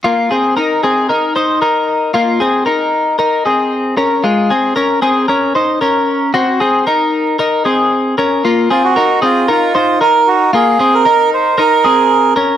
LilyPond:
<<
  \new Staff \with { instrumentName = "Melodica" } { \time 4/4 \key ees \dorian \tempo 4 = 114 r1 | r1 | r1 | r1 |
r8 f'16 ges'8. f'8 f'8 f'8 bes'8 ges'8 | aes'8. bes'8. c''8 bes'4. r8 | }
  \new Staff \with { instrumentName = "Clean electric guitar" } { \time 4/4 \key ees \dorian <bes f'>8 <c' aes'>8 <ees' bes'>8 <c' aes'>8 <ees' bes'>8 <ees' c''>8 <ees' bes'>4 | <bes f'>8 <c' aes'>8 <ees' bes'>4 <ees' bes'>8 <c' aes'>4 <des' bes'>8 | <aes f'>8 <c' aes'>8 <des' bes'>8 <c' aes'>8 <des' bes'>8 <ees' c''>8 <des' bes'>4 | <c' ges'>8 <c' aes'>8 <ees' bes'>4 <ees' bes'>8 <c' aes'>4 <des' bes'>8 |
<bes f'>8 <c' aes'>8 <ees' bes'>8 <c' aes'>8 <ees' bes'>8 <ees' c''>8 <ees' bes'>4 | <bes f'>8 <c' aes'>8 <ees' bes'>4 <ees' bes'>8 <c' aes'>4 <des' bes'>8 | }
>>